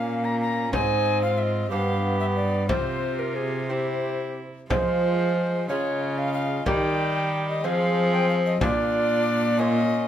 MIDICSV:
0, 0, Header, 1, 7, 480
1, 0, Start_track
1, 0, Key_signature, -4, "minor"
1, 0, Tempo, 652174
1, 539, Time_signature, 6, 3, 24, 8
1, 1982, Tempo, 665927
1, 3902, Tempo, 652174
1, 7377, End_track
2, 0, Start_track
2, 0, Title_t, "Recorder"
2, 0, Program_c, 0, 74
2, 0, Note_on_c, 0, 77, 91
2, 181, Note_on_c, 0, 82, 80
2, 192, Note_off_c, 0, 77, 0
2, 295, Note_off_c, 0, 82, 0
2, 299, Note_on_c, 0, 82, 84
2, 534, Note_off_c, 0, 82, 0
2, 537, Note_on_c, 0, 80, 90
2, 891, Note_off_c, 0, 80, 0
2, 903, Note_on_c, 0, 77, 89
2, 1016, Note_on_c, 0, 76, 66
2, 1027, Note_off_c, 0, 77, 0
2, 1051, Note_on_c, 0, 75, 72
2, 1058, Note_off_c, 0, 76, 0
2, 1253, Note_off_c, 0, 75, 0
2, 1257, Note_on_c, 0, 77, 89
2, 1612, Note_off_c, 0, 77, 0
2, 1619, Note_on_c, 0, 76, 73
2, 1664, Note_off_c, 0, 76, 0
2, 1734, Note_on_c, 0, 74, 77
2, 1974, Note_off_c, 0, 74, 0
2, 1979, Note_on_c, 0, 72, 84
2, 2341, Note_on_c, 0, 70, 70
2, 2352, Note_off_c, 0, 72, 0
2, 2462, Note_on_c, 0, 68, 73
2, 2473, Note_off_c, 0, 70, 0
2, 2705, Note_on_c, 0, 67, 71
2, 2716, Note_off_c, 0, 68, 0
2, 3218, Note_off_c, 0, 67, 0
2, 3434, Note_on_c, 0, 72, 85
2, 4116, Note_off_c, 0, 72, 0
2, 4144, Note_on_c, 0, 73, 102
2, 4507, Note_on_c, 0, 77, 88
2, 4518, Note_off_c, 0, 73, 0
2, 4619, Note_off_c, 0, 77, 0
2, 4624, Note_on_c, 0, 77, 88
2, 4858, Note_off_c, 0, 77, 0
2, 4864, Note_on_c, 0, 79, 92
2, 5450, Note_off_c, 0, 79, 0
2, 5471, Note_on_c, 0, 75, 88
2, 5591, Note_on_c, 0, 77, 108
2, 5602, Note_off_c, 0, 75, 0
2, 5948, Note_on_c, 0, 79, 92
2, 5959, Note_off_c, 0, 77, 0
2, 6058, Note_off_c, 0, 79, 0
2, 6063, Note_on_c, 0, 77, 86
2, 6107, Note_off_c, 0, 77, 0
2, 6186, Note_on_c, 0, 75, 79
2, 6297, Note_off_c, 0, 75, 0
2, 6302, Note_on_c, 0, 74, 110
2, 7018, Note_on_c, 0, 75, 113
2, 7029, Note_off_c, 0, 74, 0
2, 7377, Note_off_c, 0, 75, 0
2, 7377, End_track
3, 0, Start_track
3, 0, Title_t, "Viola"
3, 0, Program_c, 1, 41
3, 0, Note_on_c, 1, 61, 51
3, 534, Note_on_c, 1, 63, 56
3, 545, Note_off_c, 1, 61, 0
3, 902, Note_on_c, 1, 65, 67
3, 913, Note_off_c, 1, 63, 0
3, 1256, Note_off_c, 1, 65, 0
3, 1260, Note_on_c, 1, 67, 65
3, 1968, Note_off_c, 1, 67, 0
3, 1987, Note_on_c, 1, 65, 53
3, 2713, Note_on_c, 1, 64, 53
3, 2724, Note_off_c, 1, 65, 0
3, 3288, Note_off_c, 1, 64, 0
3, 3435, Note_on_c, 1, 65, 66
3, 4117, Note_off_c, 1, 65, 0
3, 4146, Note_on_c, 1, 65, 60
3, 4872, Note_on_c, 1, 67, 64
3, 4883, Note_off_c, 1, 65, 0
3, 5579, Note_on_c, 1, 68, 71
3, 5590, Note_off_c, 1, 67, 0
3, 6295, Note_off_c, 1, 68, 0
3, 6300, Note_on_c, 1, 65, 74
3, 6992, Note_off_c, 1, 65, 0
3, 7028, Note_on_c, 1, 65, 65
3, 7377, Note_off_c, 1, 65, 0
3, 7377, End_track
4, 0, Start_track
4, 0, Title_t, "Lute"
4, 0, Program_c, 2, 24
4, 0, Note_on_c, 2, 46, 53
4, 0, Note_on_c, 2, 61, 42
4, 0, Note_on_c, 2, 65, 48
4, 0, Note_on_c, 2, 70, 41
4, 508, Note_off_c, 2, 46, 0
4, 510, Note_off_c, 2, 61, 0
4, 511, Note_off_c, 2, 65, 0
4, 513, Note_off_c, 2, 70, 0
4, 542, Note_on_c, 2, 44, 56
4, 543, Note_on_c, 2, 60, 52
4, 544, Note_on_c, 2, 72, 50
4, 1231, Note_off_c, 2, 44, 0
4, 1231, Note_off_c, 2, 60, 0
4, 1232, Note_off_c, 2, 72, 0
4, 1260, Note_on_c, 2, 43, 49
4, 1263, Note_on_c, 2, 59, 47
4, 1263, Note_on_c, 2, 62, 45
4, 1268, Note_on_c, 2, 67, 47
4, 1953, Note_off_c, 2, 43, 0
4, 1953, Note_off_c, 2, 59, 0
4, 1955, Note_off_c, 2, 62, 0
4, 1957, Note_off_c, 2, 67, 0
4, 1981, Note_on_c, 2, 48, 56
4, 1984, Note_on_c, 2, 60, 45
4, 1986, Note_on_c, 2, 65, 46
4, 1992, Note_on_c, 2, 79, 45
4, 2670, Note_off_c, 2, 60, 0
4, 2672, Note_off_c, 2, 65, 0
4, 2676, Note_off_c, 2, 79, 0
4, 2704, Note_on_c, 2, 60, 38
4, 2709, Note_on_c, 2, 64, 41
4, 2715, Note_on_c, 2, 67, 37
4, 3253, Note_off_c, 2, 48, 0
4, 3402, Note_off_c, 2, 60, 0
4, 3404, Note_off_c, 2, 64, 0
4, 3407, Note_off_c, 2, 67, 0
4, 3428, Note_on_c, 2, 53, 60
4, 3430, Note_on_c, 2, 60, 49
4, 3431, Note_on_c, 2, 65, 57
4, 3438, Note_on_c, 2, 68, 51
4, 4113, Note_off_c, 2, 53, 0
4, 4113, Note_off_c, 2, 60, 0
4, 4115, Note_off_c, 2, 65, 0
4, 4118, Note_off_c, 2, 68, 0
4, 4149, Note_on_c, 2, 49, 53
4, 4152, Note_on_c, 2, 61, 44
4, 4154, Note_on_c, 2, 65, 50
4, 4159, Note_on_c, 2, 68, 51
4, 4836, Note_off_c, 2, 49, 0
4, 4837, Note_off_c, 2, 61, 0
4, 4839, Note_off_c, 2, 65, 0
4, 4841, Note_off_c, 2, 68, 0
4, 4861, Note_on_c, 2, 51, 66
4, 4861, Note_on_c, 2, 58, 53
4, 4866, Note_on_c, 2, 63, 54
4, 4871, Note_on_c, 2, 67, 59
4, 5550, Note_off_c, 2, 58, 0
4, 5551, Note_off_c, 2, 51, 0
4, 5553, Note_off_c, 2, 63, 0
4, 5555, Note_off_c, 2, 67, 0
4, 5583, Note_on_c, 2, 53, 59
4, 5585, Note_on_c, 2, 56, 53
4, 5588, Note_on_c, 2, 60, 51
4, 5592, Note_on_c, 2, 68, 51
4, 6272, Note_off_c, 2, 53, 0
4, 6273, Note_off_c, 2, 56, 0
4, 6275, Note_off_c, 2, 60, 0
4, 6276, Note_off_c, 2, 68, 0
4, 6306, Note_on_c, 2, 46, 66
4, 6307, Note_on_c, 2, 58, 51
4, 6310, Note_on_c, 2, 62, 60
4, 6314, Note_on_c, 2, 65, 56
4, 6995, Note_off_c, 2, 58, 0
4, 6997, Note_off_c, 2, 62, 0
4, 6999, Note_off_c, 2, 65, 0
4, 7022, Note_on_c, 2, 58, 53
4, 7029, Note_on_c, 2, 61, 54
4, 7032, Note_on_c, 2, 65, 51
4, 7377, Note_off_c, 2, 46, 0
4, 7377, Note_off_c, 2, 58, 0
4, 7377, Note_off_c, 2, 61, 0
4, 7377, Note_off_c, 2, 65, 0
4, 7377, End_track
5, 0, Start_track
5, 0, Title_t, "Bassoon"
5, 0, Program_c, 3, 70
5, 0, Note_on_c, 3, 58, 65
5, 534, Note_off_c, 3, 58, 0
5, 538, Note_on_c, 3, 60, 62
5, 1257, Note_on_c, 3, 59, 68
5, 1268, Note_off_c, 3, 60, 0
5, 1981, Note_off_c, 3, 59, 0
5, 1984, Note_on_c, 3, 60, 54
5, 2485, Note_off_c, 3, 60, 0
5, 2700, Note_on_c, 3, 60, 55
5, 3164, Note_off_c, 3, 60, 0
5, 3431, Note_on_c, 3, 56, 61
5, 4114, Note_off_c, 3, 56, 0
5, 4145, Note_on_c, 3, 56, 69
5, 4849, Note_off_c, 3, 56, 0
5, 4863, Note_on_c, 3, 55, 71
5, 5567, Note_off_c, 3, 55, 0
5, 5583, Note_on_c, 3, 60, 83
5, 6287, Note_off_c, 3, 60, 0
5, 6302, Note_on_c, 3, 62, 74
5, 6993, Note_off_c, 3, 62, 0
5, 7022, Note_on_c, 3, 61, 70
5, 7377, Note_off_c, 3, 61, 0
5, 7377, End_track
6, 0, Start_track
6, 0, Title_t, "Cello"
6, 0, Program_c, 4, 42
6, 0, Note_on_c, 4, 46, 57
6, 532, Note_off_c, 4, 46, 0
6, 536, Note_on_c, 4, 44, 67
6, 1243, Note_off_c, 4, 44, 0
6, 1260, Note_on_c, 4, 43, 67
6, 1982, Note_on_c, 4, 48, 68
6, 1993, Note_off_c, 4, 43, 0
6, 3281, Note_off_c, 4, 48, 0
6, 3431, Note_on_c, 4, 53, 70
6, 4144, Note_on_c, 4, 49, 66
6, 4155, Note_off_c, 4, 53, 0
6, 4857, Note_off_c, 4, 49, 0
6, 4862, Note_on_c, 4, 51, 76
6, 5566, Note_off_c, 4, 51, 0
6, 5584, Note_on_c, 4, 53, 85
6, 6288, Note_off_c, 4, 53, 0
6, 6302, Note_on_c, 4, 46, 80
6, 7377, Note_off_c, 4, 46, 0
6, 7377, End_track
7, 0, Start_track
7, 0, Title_t, "Frame drum"
7, 537, Note_on_c, 9, 64, 69
7, 611, Note_off_c, 9, 64, 0
7, 1981, Note_on_c, 9, 64, 77
7, 2053, Note_off_c, 9, 64, 0
7, 3432, Note_on_c, 9, 64, 75
7, 3504, Note_off_c, 9, 64, 0
7, 4863, Note_on_c, 9, 64, 74
7, 4937, Note_off_c, 9, 64, 0
7, 6298, Note_on_c, 9, 64, 78
7, 6371, Note_off_c, 9, 64, 0
7, 7377, End_track
0, 0, End_of_file